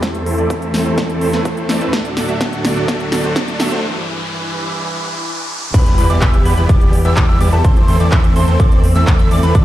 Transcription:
Already playing: E2, riser
0.02 C3 E3 A3 C4 E4 A4, kick, snare, closed hi-hat
0.15 closed hi-hat
0.26 A3 C4 E4 A4 C5, open hi-hat
0.38 A3 C4 E4 A4 D5, closed hi-hat
0.50 A3 C4 E4 A4 E5, kick, closed hi-hat
0.62 closed hi-hat
0.74 A3 C4 E4 A4 C5, snare, open hi-hat
0.86 A3 C4 E4 A4 C5, closed hi-hat
0.98 A3 C4, kick, snare, closed hi-hat
1.09 closed hi-hat
1.21 A3 C4 E4 A4 C5, open hi-hat
1.33 A3 C4 E4 A4 B4, snare, closed hi-hat
1.45 C4 E4, kick, closed hi-hat
1.57 closed hi-hat
1.69 A3 C4 E4 A4 D5, snare, open hi-hat
1.81 A3 C4 E4 A4 B4, closed hi-hat
1.93 D2 A2 F#3 A3 D4 F#4 A4 D5, kick, snare, closed hi-hat
2.05 closed hi-hat
2.17 A3 D4 F#4 A4 D5, snare, open hi-hat
2.29 A3 D4 F#4 A4 E5, closed hi-hat
2.40 A3 D4 F#4 A4 F#5, kick, snare, closed hi-hat
2.53 closed hi-hat
2.64 A3 D4 F#4 A4 D5, snare, open hi-hat
2.76 A3 D4 F#4 A4 D5, closed hi-hat
2.88 A3 D4 F#4 A4 E5, kick, snare, closed hi-hat
3.00 closed hi-hat
3.12 A3 D4 F#4 A4 D5, snare, open hi-hat
3.24 A3 D4 F#4 A4 C5, closed hi-hat
3.36 A3 D4 F#4, kick, snare, closed hi-hat
3.48 closed hi-hat
3.60 A3 D4 F#4 A4 E5, snare, open hi-hat
3.72 A3 D4 F#4 A4 C5, closed hi-hat
3.83 C2 G2 E3
5.74 E2 E3 G3 B3 E4 G4 B4 B5, kick, closed hi-hat, crash, impact
5.86 closed hi-hat
5.98 E2 G3 B3 E4 G4 B4 B5, open hi-hat
6.10 E2 G3 B3 E4 G4 D5 D6, closed hi-hat
6.21 E2 G3 B3 E4 G4 E6, kick, clap, closed hi-hat
6.34 closed hi-hat
6.45 E2 G3 B3 E4 G4 B4 B5, open hi-hat
6.57 E2 G3 B3 E4 G4 B4 B5, closed hi-hat
6.69 E2 G3 B3 E4 G4 D6, kick, closed hi-hat
6.81 closed hi-hat
6.93 open hi-hat
7.05 E2 G3 B3 E4 G4 E5 E6, closed hi-hat
7.17 E2 G3 B3 E4 G4 D5 D6, kick, clap, closed hi-hat
7.29 E2 G3 B3 E4 G4 E5 E6
7.41 E2 G3 B3 E4 G4 D5 D6, open hi-hat
7.53 E2 G3 B3 E4 G4 A4 A5, closed hi-hat
7.64 E2 A3 C4 A4 C6, kick, closed hi-hat
7.76 closed hi-hat
7.88 E2 A3 C4 E4 A4 C5 C6, open hi-hat
8.00 E2 A3 C4 E4 A4 D5 D6, closed hi-hat
8.12 E2 A3 C4 E4 A4 E5 E6, kick, clap, closed hi-hat
8.24 closed hi-hat
8.36 E2 A3 C4 E4 A4 C5 C6, open hi-hat
8.48 E2 A3 C4 E4 A4 C5 C6, closed hi-hat
8.60 E2 A3 C4 E4 A4 D6, kick, closed hi-hat
8.72 closed hi-hat
8.84 open hi-hat
8.95 E2 A3 C4 E4 A4 E5 E6, closed hi-hat
9.07 E2 A3 C4 E4 A4 D5 D6, kick, clap, closed hi-hat
9.19 E2 A3 C4 E4 A4 E5 E6, closed hi-hat
9.31 E2 A3 C4 E4 A4 D5 D6, open hi-hat
9.43 E2 A3 C4 E4 A4 B4 B5, closed hi-hat
9.55 D2 D3 D4 F#4 D6, kick, closed hi-hat

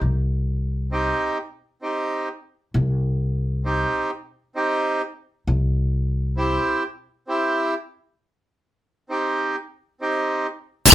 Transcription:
0.01 C2
0.91 C4 D#4 G4
1.82 C4 D#4 G4
2.74 C2
3.64 C4 D#4 G4
4.55 C4 D#4 G4
5.47 C2
6.37 C4 E4 G4
7.28 C4 E4 G4
9.09 C4 D#4 G4
10.01 C4 D#4 G4
10.92 closed hi-hat

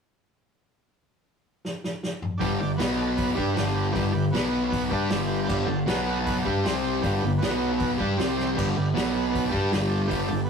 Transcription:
1.65 snare
1.84 snare
2.03 snare
2.22 mid tom
2.38 G2 D3 G3 D4 G4 B4, kick, open hi-hat
2.42 G1
2.59 G1 G2 D3 D4 G4 D5
2.77 B1 B2 F#3 B3 F#4 B4, snare, open hi-hat
2.81 B3
2.95 B3 F#4 A4
3.16 B3 F#4 B4, kick, open hi-hat
3.34 G3 D4 G4 B4, kick
3.38 G2
3.53 G1 G2 D3 G3, snare, open hi-hat
3.74 D4 G4 B4
3.92 G1 G2 D3 G3 D4 G4 B4, kick, open hi-hat
4.12 G1 G2 D3 D4 G4 B4
4.31 B1 B2 F#3 B3 F#4 B4, snare, open hi-hat
4.47 B3 F#4 B4
4.68 B3 F#4 B4
4.73 kick, open hi-hat
4.89 G2 G3 D4 G4 B4, kick
5.10 G1 G2 D3 G3, snare, open hi-hat
5.25 D4 G4 B4
5.44 D4 G4 B4
5.49 G1 G2 D3 G3, kick, crash
5.64 G1 G2 D4 G4 A4
5.68 D3
5.86 B1 B2 F#3 B3 F#4 B4, snare, open hi-hat
6.05 B3 F#4 B4
6.25 B3 F#4 B4, kick, open hi-hat
6.42 G3 D4 G4 B4, kick
6.46 G2 G4
6.63 C2 C3 G3 C4 G4 C5, snare, open hi-hat
6.83 C4 G4 C5
7.00 G1 G2 D3 D4 G4 B4, kick, open hi-hat
7.05 G3
7.17 D4 G4 B4
7.22 G1 G2 D3
7.38 B2 B3 F#4 B4
7.42 B1 F#3 B3, snare, open hi-hat
7.58 B3 F#4 B4
7.78 B3 F#4 B4, kick, open hi-hat
7.98 G2 G3 D4 G4 B4, kick
8.17 C2 C3 G3 C4 G4 C5, snare, open hi-hat
8.37 C4 G4 C5, snare
8.54 G1 G2 D3 G3 D4 G4 B4, kick
8.59 crash
8.76 G1 G2 D3 D4 G4 B4
8.94 B1 B2 F#3 B3 F#4 B4, snare, open hi-hat
9.11 B3 F#4 B4
9.29 B3 F#4 B4
9.35 kick, open hi-hat
9.47 G3 D4 G4 B4
9.51 G2 D4 G4, kick
9.72 G1 G2 D3 G3, snare, open hi-hat
9.86 D4 G4 A4
10.05 G2 D4 G4 B4
10.09 G1 D3 G3, kick, open hi-hat
10.25 G2 D4 G4 A4
10.30 G1 D3
10.44 B3 F#4 B4

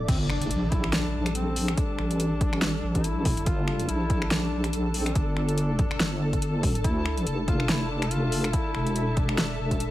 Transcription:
0.08 G1 G3 C4 D4 A4, kick, closed hi-hat, crash, impact
0.29 D4, finger snap
0.41 closed hi-hat
0.51 A#1, closed hi-hat
0.72 E4, kick, closed hi-hat
0.84 finger snap
0.93 D4, snare, closed hi-hat
1.26 finger snap, closed hi-hat
1.35 C4, closed hi-hat
1.56 open hi-hat
1.68 finger snap, closed hi-hat
1.77 D4, kick, closed hi-hat
1.99 A1, finger snap
2.11 closed hi-hat
2.20 closed hi-hat
2.41 kick, closed hi-hat
2.53 finger snap
2.62 snare, closed hi-hat
2.83 A1
2.95 kick, closed hi-hat
3.04 E4, closed hi-hat
3.25 kick, open hi-hat
3.37 closed hi-hat
3.46 G1 F4, kick, closed hi-hat
3.68 finger snap
3.79 closed hi-hat
3.89 A#1 E4, closed hi-hat
4.10 kick, closed hi-hat
4.22 finger snap
4.31 D4, snare, closed hi-hat
4.64 finger snap, closed hi-hat
4.73 closed hi-hat
4.94 C4, open hi-hat
5.06 finger snap, closed hi-hat
5.15 G1 D4, kick, closed hi-hat
5.37 D4, finger snap
5.49 closed hi-hat
5.58 closed hi-hat
5.79 kick, closed hi-hat
5.91 finger snap
6.00 G1, snare, closed hi-hat
6.33 kick, closed hi-hat
6.42 closed hi-hat
6.63 kick, open hi-hat
6.75 closed hi-hat
6.84 D2 E4 E5, kick, closed hi-hat
7.06 finger snap
7.17 closed hi-hat
7.27 F1, closed hi-hat
7.48 F4, kick, closed hi-hat
7.60 finger snap
7.69 E4, snare, closed hi-hat
7.90 D4
8.02 finger snap, closed hi-hat
8.11 F4, closed hi-hat
8.32 open hi-hat
8.44 finger snap, closed hi-hat
8.53 E4, kick, closed hi-hat
8.75 E1, finger snap
8.87 closed hi-hat
8.96 closed hi-hat
9.17 D4, kick, closed hi-hat
9.29 finger snap
9.38 snare, closed hi-hat
9.59 E1
9.71 kick, closed hi-hat
9.80 closed hi-hat

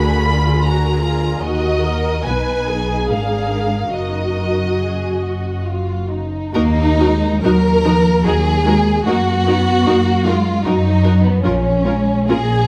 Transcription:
Already playing: D2 D3 F#4 G#4 A#4 B5
0.26 F4
0.64 F#4 G#4 A#4 A#5
1.02 F4
1.40 D#2 D#3 F#4 A#4 D#5
1.81 A#4
2.26 B1 B2 D#4 B4 G#5
2.67 G#4
3.10 G#1 G#2 D4 A#4 F5
3.92 F#1 F#2 D#4 F#4 A#4 D#5
4.76 G#4
5.20 F#4
5.64 F4
6.09 D#4
6.52 D#2 A#3 D#4 F#4 A#4
6.98 G#3 D#4 F#4 A#4
7.43 D#2 F#3 D#4 F#4 A#4
7.85 F3 D#4 F#4 A#4
8.24 D#2 F#3 D#4 F#4 G#4 A#4
8.64 G#3 D#4 F#4 A#4
9.04 F#2 A#3 D#4 F#4 A#4
9.46 B3 D#4 F#4 A#4
9.87 F#2 A#3 D#4 F#4 A#4
10.25 G#3 D#4 F4 F#4 A#4
10.64 F#2 F#3 D#4 F#4 A#4
11.04 D#4 F#4 A#4
11.24 B3
11.42 A#1 F3 C#4 F4 A#4
11.84 G#3 C#4 F4 A#4
12.28 A#1 A#3 C#4 F4 G#4 A#4

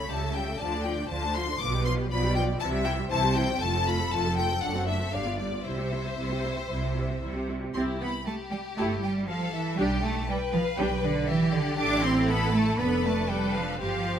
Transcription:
Already playing: A3 A4
0.10 C#2 C#3 G3 G4 E5 A5
0.23 A3 A4
0.35 G3 G4 G5
0.49 A3 A4
0.59 D2 D3 F3 F4 D5 A5
0.74 A3 D4
0.84 F3 F4 G5
0.99 A3 D4
1.09 D2 D3 F3 F4 C5 A5
1.24 A3 D4
1.35 F3 F4 C6
1.49 A3 D4
1.60 B1 B2 F3 F4 B4 D6
1.74 G3 G4
1.85 F3 F4 C6
1.99 G3 G4
2.11 B1 B2 F3 F4 D5 B5
2.24 G3 G4
2.35 F3 F4 G5
2.49 G3 G4
2.60 C2 C3 E3 E4 E5 A5
2.73 G3 G4
2.85 E3 E4 G5
2.98 G3 G4
3.10 C2 C3 E3 E4 C5 A5
3.25 G3 G4
3.36 E3 E4 G5
3.50 G3 G4
3.60 F1 F2 A3 F4 A4 A5
3.75 F3 A4
3.88 A3 F4 B5
4.00 F3 A4
4.11 F1 F2 A3 F4 A5
4.26 F3 A4
4.37 A3 F4 G5
4.51 F3 A4
4.61 F#1 F#2 A3 D4 F#5
4.76 C4 F#4
4.87 A3 D4 E5
5.00 C4 F#4
5.11 G1 G2 G3 D4 D5 F5
5.26 B3 F4
5.39 G3 D4 D5
5.52 B3 F4
5.64 C2 C3 G3 E4 C5 E5
5.79 C4 G4
5.93 G3 E4
6.06 C4 G4
6.18 C2 C3 G3 E4
6.32 C4 G4
6.45 G3 E4
6.57 C4 G4
6.70 C2 C3 G3 E4
6.84 C4 G4
6.96 G3 E4
7.09 C4 G4
7.23 C2 C3 G3 E4
7.36 C4 G4
7.50 G3 E4
7.63 C4 G4
7.74 C2 C4 E4 G4 C6
8.01 B3 B5
8.26 A3 G4 A5
8.50 G3 G5
8.76 G1 A3 E4 G4 A5
9.02 G3 G5
9.27 F3 A4 F5
9.52 E3 E5
9.77 B1 G3 D4 G4 G5
10.03 A3 A5
10.29 G3 B4 G5
10.53 F3 F5
10.78 B1 G3 D4 G4 G5
11.04 D3 D5
11.28 E3 G4 E5
11.53 D3 D5
11.78 A1 D4 E4 A4 D6
12.04 C4 C6
12.28 B3 A4 B5
12.54 A3 A5
12.78 F1 B3 D4 A4 B4 B5
13.05 A3 A5
13.29 G3 A4 B4 G5
13.54 F3 F5
13.80 G1 F3 G4 C5 F5

